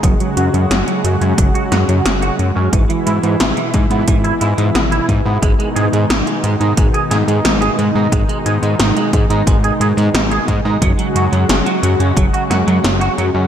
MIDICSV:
0, 0, Header, 1, 5, 480
1, 0, Start_track
1, 0, Key_signature, 5, "minor"
1, 0, Tempo, 674157
1, 23, Time_signature, 4, 2, 24, 8
1, 9592, End_track
2, 0, Start_track
2, 0, Title_t, "Clean electric guitar"
2, 0, Program_c, 0, 27
2, 24, Note_on_c, 0, 54, 78
2, 84, Note_off_c, 0, 54, 0
2, 143, Note_on_c, 0, 54, 97
2, 203, Note_off_c, 0, 54, 0
2, 263, Note_on_c, 0, 66, 72
2, 323, Note_off_c, 0, 66, 0
2, 383, Note_on_c, 0, 54, 73
2, 473, Note_off_c, 0, 54, 0
2, 502, Note_on_c, 0, 61, 96
2, 539, Note_off_c, 0, 61, 0
2, 622, Note_on_c, 0, 54, 104
2, 712, Note_off_c, 0, 54, 0
2, 742, Note_on_c, 0, 54, 77
2, 802, Note_off_c, 0, 54, 0
2, 862, Note_on_c, 0, 61, 77
2, 952, Note_off_c, 0, 61, 0
2, 982, Note_on_c, 0, 54, 77
2, 1042, Note_off_c, 0, 54, 0
2, 1101, Note_on_c, 0, 66, 75
2, 1162, Note_off_c, 0, 66, 0
2, 1222, Note_on_c, 0, 66, 73
2, 1258, Note_off_c, 0, 66, 0
2, 1340, Note_on_c, 0, 54, 73
2, 1401, Note_off_c, 0, 54, 0
2, 1460, Note_on_c, 0, 61, 97
2, 1497, Note_off_c, 0, 61, 0
2, 1580, Note_on_c, 0, 66, 99
2, 1671, Note_off_c, 0, 66, 0
2, 1700, Note_on_c, 0, 54, 75
2, 1762, Note_off_c, 0, 54, 0
2, 1820, Note_on_c, 0, 61, 74
2, 1911, Note_off_c, 0, 61, 0
2, 1941, Note_on_c, 0, 52, 76
2, 2002, Note_off_c, 0, 52, 0
2, 2060, Note_on_c, 0, 52, 96
2, 2121, Note_off_c, 0, 52, 0
2, 2182, Note_on_c, 0, 64, 70
2, 2243, Note_off_c, 0, 64, 0
2, 2301, Note_on_c, 0, 52, 72
2, 2392, Note_off_c, 0, 52, 0
2, 2421, Note_on_c, 0, 59, 97
2, 2458, Note_off_c, 0, 59, 0
2, 2540, Note_on_c, 0, 52, 103
2, 2632, Note_off_c, 0, 52, 0
2, 2662, Note_on_c, 0, 52, 73
2, 2722, Note_off_c, 0, 52, 0
2, 2780, Note_on_c, 0, 59, 78
2, 2871, Note_off_c, 0, 59, 0
2, 2902, Note_on_c, 0, 52, 78
2, 2962, Note_off_c, 0, 52, 0
2, 3019, Note_on_c, 0, 64, 72
2, 3081, Note_off_c, 0, 64, 0
2, 3139, Note_on_c, 0, 64, 77
2, 3177, Note_off_c, 0, 64, 0
2, 3258, Note_on_c, 0, 52, 75
2, 3320, Note_off_c, 0, 52, 0
2, 3379, Note_on_c, 0, 59, 94
2, 3417, Note_off_c, 0, 59, 0
2, 3499, Note_on_c, 0, 64, 93
2, 3591, Note_off_c, 0, 64, 0
2, 3620, Note_on_c, 0, 52, 70
2, 3681, Note_off_c, 0, 52, 0
2, 3740, Note_on_c, 0, 59, 69
2, 3831, Note_off_c, 0, 59, 0
2, 3859, Note_on_c, 0, 56, 79
2, 3921, Note_off_c, 0, 56, 0
2, 3980, Note_on_c, 0, 56, 91
2, 4041, Note_off_c, 0, 56, 0
2, 4099, Note_on_c, 0, 68, 72
2, 4161, Note_off_c, 0, 68, 0
2, 4220, Note_on_c, 0, 56, 71
2, 4312, Note_off_c, 0, 56, 0
2, 4341, Note_on_c, 0, 63, 98
2, 4378, Note_off_c, 0, 63, 0
2, 4459, Note_on_c, 0, 56, 102
2, 4551, Note_off_c, 0, 56, 0
2, 4580, Note_on_c, 0, 56, 72
2, 4641, Note_off_c, 0, 56, 0
2, 4701, Note_on_c, 0, 63, 75
2, 4792, Note_off_c, 0, 63, 0
2, 4820, Note_on_c, 0, 56, 79
2, 4881, Note_off_c, 0, 56, 0
2, 4941, Note_on_c, 0, 68, 75
2, 5002, Note_off_c, 0, 68, 0
2, 5060, Note_on_c, 0, 68, 77
2, 5097, Note_off_c, 0, 68, 0
2, 5181, Note_on_c, 0, 56, 73
2, 5242, Note_off_c, 0, 56, 0
2, 5302, Note_on_c, 0, 63, 97
2, 5338, Note_off_c, 0, 63, 0
2, 5420, Note_on_c, 0, 68, 98
2, 5512, Note_off_c, 0, 68, 0
2, 5542, Note_on_c, 0, 56, 73
2, 5603, Note_off_c, 0, 56, 0
2, 5662, Note_on_c, 0, 63, 75
2, 5753, Note_off_c, 0, 63, 0
2, 5781, Note_on_c, 0, 56, 82
2, 5842, Note_off_c, 0, 56, 0
2, 5900, Note_on_c, 0, 56, 94
2, 5962, Note_off_c, 0, 56, 0
2, 6022, Note_on_c, 0, 68, 72
2, 6083, Note_off_c, 0, 68, 0
2, 6141, Note_on_c, 0, 56, 75
2, 6232, Note_off_c, 0, 56, 0
2, 6261, Note_on_c, 0, 63, 96
2, 6298, Note_off_c, 0, 63, 0
2, 6383, Note_on_c, 0, 56, 97
2, 6473, Note_off_c, 0, 56, 0
2, 6502, Note_on_c, 0, 56, 76
2, 6562, Note_off_c, 0, 56, 0
2, 6622, Note_on_c, 0, 63, 78
2, 6712, Note_off_c, 0, 63, 0
2, 6742, Note_on_c, 0, 56, 81
2, 6803, Note_off_c, 0, 56, 0
2, 6863, Note_on_c, 0, 68, 73
2, 6923, Note_off_c, 0, 68, 0
2, 6984, Note_on_c, 0, 68, 75
2, 7020, Note_off_c, 0, 68, 0
2, 7104, Note_on_c, 0, 56, 76
2, 7164, Note_off_c, 0, 56, 0
2, 7225, Note_on_c, 0, 63, 101
2, 7260, Note_off_c, 0, 63, 0
2, 7343, Note_on_c, 0, 68, 94
2, 7433, Note_off_c, 0, 68, 0
2, 7464, Note_on_c, 0, 56, 78
2, 7523, Note_off_c, 0, 56, 0
2, 7582, Note_on_c, 0, 63, 76
2, 7672, Note_off_c, 0, 63, 0
2, 7703, Note_on_c, 0, 54, 85
2, 7763, Note_off_c, 0, 54, 0
2, 7822, Note_on_c, 0, 54, 94
2, 7883, Note_off_c, 0, 54, 0
2, 7944, Note_on_c, 0, 66, 71
2, 8003, Note_off_c, 0, 66, 0
2, 8062, Note_on_c, 0, 54, 78
2, 8153, Note_off_c, 0, 54, 0
2, 8183, Note_on_c, 0, 61, 98
2, 8219, Note_off_c, 0, 61, 0
2, 8303, Note_on_c, 0, 54, 107
2, 8393, Note_off_c, 0, 54, 0
2, 8421, Note_on_c, 0, 54, 75
2, 8482, Note_off_c, 0, 54, 0
2, 8541, Note_on_c, 0, 61, 75
2, 8632, Note_off_c, 0, 61, 0
2, 8663, Note_on_c, 0, 54, 79
2, 8723, Note_off_c, 0, 54, 0
2, 8783, Note_on_c, 0, 66, 73
2, 8843, Note_off_c, 0, 66, 0
2, 8902, Note_on_c, 0, 66, 76
2, 8939, Note_off_c, 0, 66, 0
2, 9023, Note_on_c, 0, 54, 75
2, 9083, Note_off_c, 0, 54, 0
2, 9140, Note_on_c, 0, 61, 100
2, 9178, Note_off_c, 0, 61, 0
2, 9261, Note_on_c, 0, 66, 105
2, 9352, Note_off_c, 0, 66, 0
2, 9383, Note_on_c, 0, 54, 78
2, 9443, Note_off_c, 0, 54, 0
2, 9503, Note_on_c, 0, 61, 75
2, 9592, Note_off_c, 0, 61, 0
2, 9592, End_track
3, 0, Start_track
3, 0, Title_t, "Analog synth pad"
3, 0, Program_c, 1, 89
3, 0, Note_on_c, 1, 56, 73
3, 22, Note_on_c, 1, 66, 86
3, 23, Note_on_c, 1, 49, 78
3, 23, Note_on_c, 1, 54, 75
3, 1923, Note_off_c, 1, 66, 0
3, 1924, Note_off_c, 1, 49, 0
3, 1924, Note_off_c, 1, 54, 0
3, 1944, Note_on_c, 1, 47, 82
3, 1944, Note_on_c, 1, 52, 75
3, 1944, Note_on_c, 1, 64, 85
3, 3834, Note_off_c, 1, 56, 0
3, 3844, Note_off_c, 1, 52, 0
3, 3844, Note_off_c, 1, 64, 0
3, 3863, Note_on_c, 1, 51, 73
3, 3863, Note_on_c, 1, 56, 71
3, 3864, Note_on_c, 1, 63, 90
3, 7675, Note_off_c, 1, 47, 0
3, 7675, Note_off_c, 1, 51, 0
3, 7675, Note_off_c, 1, 63, 0
3, 7700, Note_on_c, 1, 49, 80
3, 7700, Note_on_c, 1, 54, 73
3, 7700, Note_on_c, 1, 66, 85
3, 9592, Note_off_c, 1, 49, 0
3, 9592, Note_off_c, 1, 54, 0
3, 9592, Note_off_c, 1, 56, 0
3, 9592, Note_off_c, 1, 66, 0
3, 9592, End_track
4, 0, Start_track
4, 0, Title_t, "Analog synth bass"
4, 0, Program_c, 2, 38
4, 23, Note_on_c, 2, 30, 95
4, 112, Note_off_c, 2, 30, 0
4, 263, Note_on_c, 2, 42, 79
4, 352, Note_off_c, 2, 42, 0
4, 383, Note_on_c, 2, 42, 83
4, 472, Note_off_c, 2, 42, 0
4, 502, Note_on_c, 2, 30, 77
4, 592, Note_off_c, 2, 30, 0
4, 743, Note_on_c, 2, 42, 79
4, 832, Note_off_c, 2, 42, 0
4, 863, Note_on_c, 2, 42, 94
4, 952, Note_off_c, 2, 42, 0
4, 982, Note_on_c, 2, 30, 81
4, 1071, Note_off_c, 2, 30, 0
4, 1223, Note_on_c, 2, 42, 76
4, 1312, Note_off_c, 2, 42, 0
4, 1343, Note_on_c, 2, 42, 85
4, 1432, Note_off_c, 2, 42, 0
4, 1464, Note_on_c, 2, 30, 88
4, 1641, Note_off_c, 2, 30, 0
4, 1702, Note_on_c, 2, 42, 86
4, 1792, Note_off_c, 2, 42, 0
4, 1824, Note_on_c, 2, 42, 85
4, 1912, Note_off_c, 2, 42, 0
4, 1942, Note_on_c, 2, 32, 94
4, 2031, Note_off_c, 2, 32, 0
4, 2185, Note_on_c, 2, 44, 81
4, 2273, Note_off_c, 2, 44, 0
4, 2304, Note_on_c, 2, 44, 80
4, 2392, Note_off_c, 2, 44, 0
4, 2423, Note_on_c, 2, 32, 80
4, 2512, Note_off_c, 2, 32, 0
4, 2663, Note_on_c, 2, 44, 84
4, 2752, Note_off_c, 2, 44, 0
4, 2781, Note_on_c, 2, 44, 97
4, 2871, Note_off_c, 2, 44, 0
4, 2902, Note_on_c, 2, 32, 90
4, 3080, Note_off_c, 2, 32, 0
4, 3142, Note_on_c, 2, 44, 86
4, 3231, Note_off_c, 2, 44, 0
4, 3262, Note_on_c, 2, 44, 86
4, 3351, Note_off_c, 2, 44, 0
4, 3381, Note_on_c, 2, 32, 80
4, 3560, Note_off_c, 2, 32, 0
4, 3622, Note_on_c, 2, 44, 96
4, 3712, Note_off_c, 2, 44, 0
4, 3742, Note_on_c, 2, 44, 96
4, 3831, Note_off_c, 2, 44, 0
4, 3862, Note_on_c, 2, 32, 95
4, 3951, Note_off_c, 2, 32, 0
4, 4103, Note_on_c, 2, 44, 81
4, 4192, Note_off_c, 2, 44, 0
4, 4223, Note_on_c, 2, 44, 80
4, 4312, Note_off_c, 2, 44, 0
4, 4342, Note_on_c, 2, 32, 78
4, 4431, Note_off_c, 2, 32, 0
4, 4584, Note_on_c, 2, 44, 80
4, 4672, Note_off_c, 2, 44, 0
4, 4703, Note_on_c, 2, 44, 94
4, 4792, Note_off_c, 2, 44, 0
4, 4823, Note_on_c, 2, 32, 87
4, 4912, Note_off_c, 2, 32, 0
4, 5064, Note_on_c, 2, 44, 77
4, 5152, Note_off_c, 2, 44, 0
4, 5183, Note_on_c, 2, 44, 84
4, 5272, Note_off_c, 2, 44, 0
4, 5304, Note_on_c, 2, 32, 85
4, 5481, Note_off_c, 2, 32, 0
4, 5544, Note_on_c, 2, 44, 85
4, 5632, Note_off_c, 2, 44, 0
4, 5663, Note_on_c, 2, 44, 89
4, 5752, Note_off_c, 2, 44, 0
4, 5782, Note_on_c, 2, 32, 96
4, 5872, Note_off_c, 2, 32, 0
4, 6023, Note_on_c, 2, 44, 79
4, 6112, Note_off_c, 2, 44, 0
4, 6142, Note_on_c, 2, 44, 82
4, 6231, Note_off_c, 2, 44, 0
4, 6262, Note_on_c, 2, 32, 81
4, 6352, Note_off_c, 2, 32, 0
4, 6502, Note_on_c, 2, 44, 81
4, 6591, Note_off_c, 2, 44, 0
4, 6621, Note_on_c, 2, 44, 99
4, 6711, Note_off_c, 2, 44, 0
4, 6741, Note_on_c, 2, 32, 93
4, 6920, Note_off_c, 2, 32, 0
4, 6980, Note_on_c, 2, 44, 75
4, 7071, Note_off_c, 2, 44, 0
4, 7100, Note_on_c, 2, 44, 107
4, 7190, Note_off_c, 2, 44, 0
4, 7220, Note_on_c, 2, 32, 89
4, 7399, Note_off_c, 2, 32, 0
4, 7462, Note_on_c, 2, 44, 94
4, 7551, Note_off_c, 2, 44, 0
4, 7584, Note_on_c, 2, 44, 101
4, 7672, Note_off_c, 2, 44, 0
4, 7702, Note_on_c, 2, 30, 95
4, 7792, Note_off_c, 2, 30, 0
4, 7941, Note_on_c, 2, 42, 81
4, 8031, Note_off_c, 2, 42, 0
4, 8063, Note_on_c, 2, 42, 79
4, 8152, Note_off_c, 2, 42, 0
4, 8182, Note_on_c, 2, 30, 82
4, 8272, Note_off_c, 2, 30, 0
4, 8422, Note_on_c, 2, 42, 82
4, 8511, Note_off_c, 2, 42, 0
4, 8542, Note_on_c, 2, 42, 96
4, 8631, Note_off_c, 2, 42, 0
4, 8663, Note_on_c, 2, 30, 89
4, 8752, Note_off_c, 2, 30, 0
4, 8904, Note_on_c, 2, 42, 82
4, 8992, Note_off_c, 2, 42, 0
4, 9023, Note_on_c, 2, 42, 89
4, 9112, Note_off_c, 2, 42, 0
4, 9143, Note_on_c, 2, 30, 82
4, 9321, Note_off_c, 2, 30, 0
4, 9384, Note_on_c, 2, 42, 88
4, 9473, Note_off_c, 2, 42, 0
4, 9502, Note_on_c, 2, 42, 83
4, 9592, Note_off_c, 2, 42, 0
4, 9592, End_track
5, 0, Start_track
5, 0, Title_t, "Drums"
5, 23, Note_on_c, 9, 36, 125
5, 26, Note_on_c, 9, 42, 93
5, 94, Note_off_c, 9, 36, 0
5, 97, Note_off_c, 9, 42, 0
5, 145, Note_on_c, 9, 42, 38
5, 216, Note_off_c, 9, 42, 0
5, 264, Note_on_c, 9, 42, 70
5, 335, Note_off_c, 9, 42, 0
5, 386, Note_on_c, 9, 42, 41
5, 457, Note_off_c, 9, 42, 0
5, 505, Note_on_c, 9, 38, 112
5, 505, Note_on_c, 9, 42, 86
5, 576, Note_off_c, 9, 38, 0
5, 576, Note_off_c, 9, 42, 0
5, 624, Note_on_c, 9, 42, 38
5, 696, Note_off_c, 9, 42, 0
5, 745, Note_on_c, 9, 42, 66
5, 816, Note_off_c, 9, 42, 0
5, 865, Note_on_c, 9, 42, 39
5, 936, Note_off_c, 9, 42, 0
5, 982, Note_on_c, 9, 36, 121
5, 984, Note_on_c, 9, 42, 92
5, 1054, Note_off_c, 9, 36, 0
5, 1055, Note_off_c, 9, 42, 0
5, 1105, Note_on_c, 9, 42, 39
5, 1177, Note_off_c, 9, 42, 0
5, 1224, Note_on_c, 9, 38, 62
5, 1224, Note_on_c, 9, 42, 64
5, 1295, Note_off_c, 9, 38, 0
5, 1295, Note_off_c, 9, 42, 0
5, 1345, Note_on_c, 9, 42, 38
5, 1416, Note_off_c, 9, 42, 0
5, 1463, Note_on_c, 9, 38, 117
5, 1463, Note_on_c, 9, 42, 93
5, 1535, Note_off_c, 9, 38, 0
5, 1535, Note_off_c, 9, 42, 0
5, 1584, Note_on_c, 9, 42, 40
5, 1655, Note_off_c, 9, 42, 0
5, 1704, Note_on_c, 9, 42, 38
5, 1775, Note_off_c, 9, 42, 0
5, 1943, Note_on_c, 9, 36, 119
5, 1944, Note_on_c, 9, 42, 83
5, 2014, Note_off_c, 9, 36, 0
5, 2015, Note_off_c, 9, 42, 0
5, 2064, Note_on_c, 9, 42, 39
5, 2135, Note_off_c, 9, 42, 0
5, 2184, Note_on_c, 9, 42, 67
5, 2255, Note_off_c, 9, 42, 0
5, 2303, Note_on_c, 9, 42, 39
5, 2374, Note_off_c, 9, 42, 0
5, 2421, Note_on_c, 9, 38, 117
5, 2421, Note_on_c, 9, 42, 80
5, 2493, Note_off_c, 9, 38, 0
5, 2493, Note_off_c, 9, 42, 0
5, 2542, Note_on_c, 9, 42, 37
5, 2613, Note_off_c, 9, 42, 0
5, 2660, Note_on_c, 9, 42, 61
5, 2662, Note_on_c, 9, 36, 104
5, 2732, Note_off_c, 9, 42, 0
5, 2734, Note_off_c, 9, 36, 0
5, 2781, Note_on_c, 9, 42, 39
5, 2852, Note_off_c, 9, 42, 0
5, 2902, Note_on_c, 9, 42, 90
5, 2903, Note_on_c, 9, 36, 117
5, 2973, Note_off_c, 9, 42, 0
5, 2974, Note_off_c, 9, 36, 0
5, 3022, Note_on_c, 9, 42, 37
5, 3093, Note_off_c, 9, 42, 0
5, 3141, Note_on_c, 9, 42, 63
5, 3212, Note_off_c, 9, 42, 0
5, 3262, Note_on_c, 9, 42, 37
5, 3333, Note_off_c, 9, 42, 0
5, 3382, Note_on_c, 9, 38, 116
5, 3382, Note_on_c, 9, 42, 85
5, 3454, Note_off_c, 9, 38, 0
5, 3454, Note_off_c, 9, 42, 0
5, 3504, Note_on_c, 9, 42, 37
5, 3575, Note_off_c, 9, 42, 0
5, 3623, Note_on_c, 9, 36, 60
5, 3623, Note_on_c, 9, 42, 38
5, 3694, Note_off_c, 9, 36, 0
5, 3695, Note_off_c, 9, 42, 0
5, 3863, Note_on_c, 9, 36, 120
5, 3864, Note_on_c, 9, 42, 84
5, 3934, Note_off_c, 9, 36, 0
5, 3935, Note_off_c, 9, 42, 0
5, 3986, Note_on_c, 9, 42, 36
5, 4057, Note_off_c, 9, 42, 0
5, 4104, Note_on_c, 9, 42, 64
5, 4175, Note_off_c, 9, 42, 0
5, 4225, Note_on_c, 9, 42, 37
5, 4296, Note_off_c, 9, 42, 0
5, 4344, Note_on_c, 9, 38, 109
5, 4344, Note_on_c, 9, 42, 83
5, 4415, Note_off_c, 9, 38, 0
5, 4415, Note_off_c, 9, 42, 0
5, 4465, Note_on_c, 9, 42, 36
5, 4536, Note_off_c, 9, 42, 0
5, 4584, Note_on_c, 9, 42, 63
5, 4655, Note_off_c, 9, 42, 0
5, 4704, Note_on_c, 9, 42, 36
5, 4775, Note_off_c, 9, 42, 0
5, 4823, Note_on_c, 9, 36, 118
5, 4823, Note_on_c, 9, 42, 88
5, 4894, Note_off_c, 9, 36, 0
5, 4894, Note_off_c, 9, 42, 0
5, 4943, Note_on_c, 9, 42, 35
5, 5015, Note_off_c, 9, 42, 0
5, 5064, Note_on_c, 9, 38, 57
5, 5064, Note_on_c, 9, 42, 62
5, 5135, Note_off_c, 9, 38, 0
5, 5135, Note_off_c, 9, 42, 0
5, 5186, Note_on_c, 9, 42, 36
5, 5257, Note_off_c, 9, 42, 0
5, 5304, Note_on_c, 9, 38, 111
5, 5304, Note_on_c, 9, 42, 84
5, 5375, Note_off_c, 9, 38, 0
5, 5375, Note_off_c, 9, 42, 0
5, 5424, Note_on_c, 9, 42, 35
5, 5495, Note_off_c, 9, 42, 0
5, 5545, Note_on_c, 9, 42, 36
5, 5616, Note_off_c, 9, 42, 0
5, 5783, Note_on_c, 9, 36, 114
5, 5785, Note_on_c, 9, 42, 83
5, 5854, Note_off_c, 9, 36, 0
5, 5856, Note_off_c, 9, 42, 0
5, 5905, Note_on_c, 9, 42, 36
5, 5976, Note_off_c, 9, 42, 0
5, 6023, Note_on_c, 9, 42, 63
5, 6095, Note_off_c, 9, 42, 0
5, 6143, Note_on_c, 9, 42, 37
5, 6215, Note_off_c, 9, 42, 0
5, 6262, Note_on_c, 9, 38, 108
5, 6262, Note_on_c, 9, 42, 81
5, 6334, Note_off_c, 9, 38, 0
5, 6334, Note_off_c, 9, 42, 0
5, 6384, Note_on_c, 9, 42, 37
5, 6455, Note_off_c, 9, 42, 0
5, 6502, Note_on_c, 9, 36, 100
5, 6503, Note_on_c, 9, 42, 63
5, 6574, Note_off_c, 9, 36, 0
5, 6574, Note_off_c, 9, 42, 0
5, 6624, Note_on_c, 9, 42, 39
5, 6695, Note_off_c, 9, 42, 0
5, 6742, Note_on_c, 9, 36, 113
5, 6745, Note_on_c, 9, 42, 86
5, 6813, Note_off_c, 9, 36, 0
5, 6816, Note_off_c, 9, 42, 0
5, 6864, Note_on_c, 9, 42, 36
5, 6936, Note_off_c, 9, 42, 0
5, 6984, Note_on_c, 9, 42, 60
5, 7056, Note_off_c, 9, 42, 0
5, 7106, Note_on_c, 9, 42, 35
5, 7177, Note_off_c, 9, 42, 0
5, 7224, Note_on_c, 9, 38, 114
5, 7224, Note_on_c, 9, 42, 86
5, 7295, Note_off_c, 9, 38, 0
5, 7295, Note_off_c, 9, 42, 0
5, 7344, Note_on_c, 9, 42, 37
5, 7415, Note_off_c, 9, 42, 0
5, 7462, Note_on_c, 9, 36, 54
5, 7463, Note_on_c, 9, 42, 36
5, 7533, Note_off_c, 9, 36, 0
5, 7534, Note_off_c, 9, 42, 0
5, 7702, Note_on_c, 9, 36, 108
5, 7704, Note_on_c, 9, 42, 89
5, 7773, Note_off_c, 9, 36, 0
5, 7775, Note_off_c, 9, 42, 0
5, 7824, Note_on_c, 9, 42, 38
5, 7895, Note_off_c, 9, 42, 0
5, 7944, Note_on_c, 9, 42, 66
5, 8015, Note_off_c, 9, 42, 0
5, 8065, Note_on_c, 9, 42, 38
5, 8136, Note_off_c, 9, 42, 0
5, 8184, Note_on_c, 9, 38, 109
5, 8184, Note_on_c, 9, 42, 84
5, 8255, Note_off_c, 9, 38, 0
5, 8255, Note_off_c, 9, 42, 0
5, 8305, Note_on_c, 9, 42, 35
5, 8376, Note_off_c, 9, 42, 0
5, 8426, Note_on_c, 9, 42, 63
5, 8497, Note_off_c, 9, 42, 0
5, 8545, Note_on_c, 9, 42, 38
5, 8616, Note_off_c, 9, 42, 0
5, 8663, Note_on_c, 9, 36, 115
5, 8666, Note_on_c, 9, 42, 87
5, 8734, Note_off_c, 9, 36, 0
5, 8737, Note_off_c, 9, 42, 0
5, 8786, Note_on_c, 9, 42, 36
5, 8858, Note_off_c, 9, 42, 0
5, 8906, Note_on_c, 9, 38, 58
5, 8906, Note_on_c, 9, 42, 59
5, 8977, Note_off_c, 9, 38, 0
5, 8977, Note_off_c, 9, 42, 0
5, 9027, Note_on_c, 9, 42, 37
5, 9098, Note_off_c, 9, 42, 0
5, 9145, Note_on_c, 9, 38, 110
5, 9145, Note_on_c, 9, 42, 87
5, 9216, Note_off_c, 9, 38, 0
5, 9216, Note_off_c, 9, 42, 0
5, 9266, Note_on_c, 9, 42, 39
5, 9337, Note_off_c, 9, 42, 0
5, 9387, Note_on_c, 9, 42, 37
5, 9458, Note_off_c, 9, 42, 0
5, 9592, End_track
0, 0, End_of_file